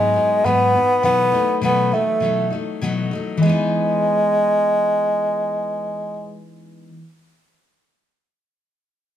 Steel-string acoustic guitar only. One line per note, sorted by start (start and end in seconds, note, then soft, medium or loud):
0.00 0.15 G#2 medium
0.00 0.16 F#3 medium
0.00 0.15 B3 medium
0.00 0.13 D#4 medium
0.14 0.45 B3 soft
0.14 0.44 D#4 medium
0.18 0.44 F#3 soft
0.44 0.74 G#2 medium
0.44 0.75 F#3 medium
0.44 0.74 B3 medium
0.44 0.72 D#4 medium
0.73 1.02 F#3 soft
0.73 1.04 B3 medium
0.73 1.04 D#4 medium
1.03 1.33 B2 medium
1.03 1.34 F#3 medium
1.03 1.33 A3 medium
1.03 1.31 D#4 medium
1.32 1.62 F#3 soft
1.32 1.62 A3 medium
1.32 1.63 D#4 medium
1.61 1.92 B2 medium
1.61 1.93 F#3 medium
1.61 1.93 A3 medium
1.61 1.91 D#4 medium
1.92 2.21 F#3 soft
1.92 2.22 A3 medium
1.92 2.22 D#4 medium
2.20 2.51 B2 medium
2.20 2.52 F#3 medium
2.20 2.51 A3 medium
2.25 2.49 D#4 medium
2.50 2.82 A3 soft
2.50 2.81 D#4 medium
2.55 2.81 F#3 soft
2.82 3.12 B2 medium
2.82 3.12 F#3 medium
2.82 3.12 A3 medium
2.82 3.10 D#4 loud
3.11 3.42 A3 medium
3.11 3.41 D#4 medium
3.15 3.42 F#3 medium
3.37 6.87 E3 medium
3.43 6.93 G#3 medium
3.43 6.96 B3 medium
3.49 6.99 D#4 medium